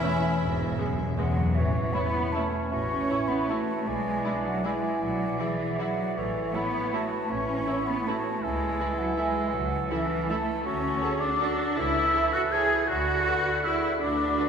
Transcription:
Already playing: french horn section E3, bassoon C#4, flute E4, oboe E4, violin section E4 E5
0.03 cello section E2, viola section A3 C#4
0.40 tuba E1, double bass section E1, timpani E2, cello section G#2
0.47 timpani E2
0.54 timpani E2
0.62 timpani E2
0.70 timpani E2
0.78 timpani E2, cello section F#2, viola section G#3 B3
0.86 timpani E2
0.93 timpani E2
1.02 timpani E2
1.09 timpani E2
1.16 timpani E2, cello section E2 F#3, viola section G#3 B3, flute F#5
1.23 timpani E2
1.30 timpani E2
1.38 timpani E2
1.46 timpani E2
1.55 double bass section A1, timpani A2, bassoon E3, cello section E3, oboe C#5, flute E5
1.93 cello section B3, viola section E4, violin section E4 C#5, french horn section E4 C#5, clarinet E4, flute B5
2.32 bassoon E3, cello section A3, clarinet C#4, french horn section E4 C#5, violin section E4 C#5, viola section E4, oboe C#5, flute A5
2.71 double bass section A1, bassoon E3, cello section C#4, clarinet F#4, oboe C#5, flute C#6
3.09 violin section E4 C#5, french horn section E4 C#5, viola section E4, clarinet E4
3.28 cello section B3, flute B5
3.49 bassoon E3, cello section A3, viola section E4, violin section E4 C#5, french horn section E4 C#5, clarinet F#4, oboe C#5, flute A5
3.87 double bass section B1, bassoon E3, cello section G#3, clarinet E4, oboe D5, flute G#5
4.24 clarinet D4, viola section E4, violin section E4 D5, french horn section E4 D5
4.45 cello section F#3, flute F#5
4.64 bassoon E3, cello section G#3, viola section E4, french horn section E4 D5, violin section E4 D5, clarinet E4, oboe D5, flute G#5
5.01 double bass section B1, cello section F#3, flute F#5
5.39 cello section E3, bassoon E3, viola section E4, violin section E4 D5, french horn section E4 D5, clarinet G#4, oboe D5, flute E5
5.79 cello section F#3, viola section E4, violin section E4 D5, french horn section E4 D5, flute F#5
6.16 double bass section A1, cello section E3, bassoon E3, clarinet A4, oboe C#5, flute E5
6.53 cello section B3, viola section E4, french horn section E4 C#5, clarinet E4, violin section A4 C#5, flute B5
6.93 bassoon E3, cello section A3, french horn section E4 C#5, viola section E4, clarinet F#4, violin section A4 C#5, oboe C#5, flute A5
7.30 double bass section A1, bassoon E3, cello section C#4, clarinet E4, oboe C#5, flute C#6
7.68 viola section E4, french horn section E4 C#5, violin section A4 C#5
7.87 cello section B3, flute B5
8.06 bassoon E3, cello section A3, french horn section E4 C#5, viola section E4, clarinet F#4, violin section A4 C#5, oboe C#5, flute A5
8.42 double bass section C#2, bassoon E3, cello section G#3, clarinet E4, oboe A4, flute G#5
8.80 viola section E4, french horn section E4 A4, clarinet E4, violin section A4 E5
8.98 cello section F#3, flute F#5
9.17 cello section G#3, viola section E4, violin section A4 E5, french horn section A4, flute G#5
9.53 double bass section C#2, cello section F#3, flute F#5
9.84 cello section F#3
9.89 bassoon E3, cello section E3, clarinet C#4, viola section E4, french horn section E4 A4, violin section A4 E5, oboe A4, flute E5
10.29 bassoon E3, cello section A3, viola section E4, french horn section E4 A4, clarinet E4, violin section A4 E5, oboe A4, flute A5
10.65 double bass section D2, bassoon F#3, cello section C#4, clarinet F#4, oboe A4, flute C#6
11.02 french horn section F#4 A4, clarinet G#4, viola section A4, violin section A4 F#5
11.20 cello section D4, flute D6
11.41 french horn section F#4 A4, clarinet F#4, viola section A4, violin section A4 F#5
11.76 double bass section C#2, bassoon E3, cello section E4, clarinet A4, flute E6
12.14 viola section A4, french horn section A4 C#5, violin section C#5 E5
12.33 cello section F#4, flute F#6
12.52 clarinet E4, cello section G#4, viola section A4, violin section C#5 E5, french horn section C#5, flute G#6
12.88 double bass section D2, bassoon D3, cello section F#4, clarinet F#4, oboe B4, flute F#6
13.25 viola section F#4, french horn section F#4 B4, clarinet A4, violin section B4 D5
13.64 cello section E4, viola section F#4, french horn section F#4 B4, clarinet G#4, violin section B4 D5, flute E6
14.00 double bass section D2, cello section D4, clarinet F#4, flute D6
14.37 viola section F#4, clarinet F#4, french horn section F#4 B4, violin section B4 D5

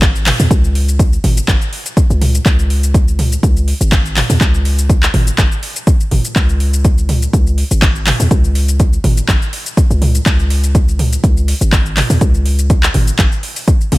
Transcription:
Already playing: 808-style bass G#1
0.02 kick, clap, closed hi-hat, shaker
0.15 shaker
0.26 clap, mid tom, open hi-hat
0.40 808-style bass E2, mid tom, open hi-hat, shaker
0.51 808-style bass C#2, kick, closed hi-hat, shaker
0.64 shaker
0.75 open hi-hat
0.88 closed hi-hat, shaker
0.99 kick, closed hi-hat, shaker
1.13 shaker
1.24 808-style bass G#1, mid tom, open hi-hat
1.37 closed hi-hat, shaker
1.48 808-style bass G#1, kick, clap, closed hi-hat, shaker
1.62 shaker
1.73 open hi-hat
1.86 closed hi-hat, shaker
1.97 kick, closed hi-hat, shaker
2.10 808-style bass C#2, shaker
2.22 mid tom, open hi-hat
2.35 closed hi-hat, shaker
2.46 808-style bass C#2, kick, clap, closed hi-hat, shaker
2.59 shaker
2.70 open hi-hat
2.83 closed hi-hat, shaker
2.94 kick, closed hi-hat, shaker
3.08 shaker
3.19 mid tom, open hi-hat
3.32 closed hi-hat, shaker
3.43 808-style bass C#2, kick, closed hi-hat, shaker
3.57 shaker
3.68 open hi-hat
3.81 808-style bass G#1, closed hi-hat, shaker
3.92 kick, clap, closed hi-hat, shaker
4.06 shaker
4.17 clap, mid tom, open hi-hat
4.30 808-style bass E2, mid tom, open hi-hat, shaker
4.41 808-style bass C#2, kick, clap, closed hi-hat, shaker
4.54 shaker
4.65 open hi-hat
4.78 closed hi-hat, shaker
4.89 kick, closed hi-hat, shaker
5.03 clap, shaker
5.14 808-style bass G#1, mid tom, open hi-hat
5.27 closed hi-hat, shaker
5.38 808-style bass G#1, kick, clap, closed hi-hat, shaker
5.52 shaker
5.63 open hi-hat
5.76 closed hi-hat, shaker
5.87 kick, closed hi-hat, shaker
6.00 shaker
6.11 808-style bass G#1, mid tom, open hi-hat
6.25 closed hi-hat, shaker
6.36 808-style bass C#2, kick, clap, closed hi-hat, shaker
6.49 shaker
6.60 open hi-hat
6.73 closed hi-hat, shaker
6.85 kick, closed hi-hat, shaker
6.98 shaker
7.09 mid tom, open hi-hat
7.22 closed hi-hat, shaker
7.33 808-style bass C#2, kick, closed hi-hat, shaker
7.47 shaker
7.58 open hi-hat
7.71 808-style bass G#1, closed hi-hat, shaker
7.82 kick, clap, closed hi-hat, shaker
7.96 shaker
8.07 clap, mid tom, open hi-hat
8.20 808-style bass E2, mid tom, open hi-hat, shaker
8.31 808-style bass C#2, kick, closed hi-hat, shaker
8.44 shaker
8.55 open hi-hat
8.68 closed hi-hat, shaker
8.80 kick, closed hi-hat, shaker
8.93 shaker
9.04 808-style bass G#1, mid tom, open hi-hat
9.17 closed hi-hat, shaker
9.28 808-style bass G#1, kick, clap, closed hi-hat, shaker
9.42 shaker
9.53 open hi-hat
9.66 closed hi-hat, shaker
9.77 kick, closed hi-hat, shaker
9.90 808-style bass C#2, shaker
10.02 mid tom, open hi-hat
10.15 closed hi-hat, shaker
10.26 808-style bass C#2, kick, clap, closed hi-hat, shaker
10.39 shaker
10.50 open hi-hat
10.64 closed hi-hat, shaker
10.75 kick, closed hi-hat, shaker
10.88 shaker
10.99 mid tom, open hi-hat
11.13 closed hi-hat, shaker
11.24 808-style bass C#2, kick, closed hi-hat, shaker
11.37 shaker
11.48 open hi-hat
11.61 808-style bass G#1, closed hi-hat, shaker
11.72 kick, clap, closed hi-hat, shaker
11.86 shaker
11.97 clap, mid tom, open hi-hat
12.10 808-style bass E2, mid tom, open hi-hat, shaker
12.21 808-style bass C#2, kick, closed hi-hat, shaker
12.34 shaker
12.46 open hi-hat
12.59 closed hi-hat, shaker
12.70 kick, closed hi-hat, shaker
12.83 clap, shaker
12.94 808-style bass G#1, mid tom, open hi-hat
13.07 closed hi-hat, shaker
13.19 808-style bass G#1, kick, clap, closed hi-hat, shaker
13.32 shaker
13.43 open hi-hat
13.56 open hi-hat, shaker
13.68 kick, closed hi-hat, shaker
13.81 shaker
13.92 808-style bass G#1, mid tom, open hi-hat, high tom

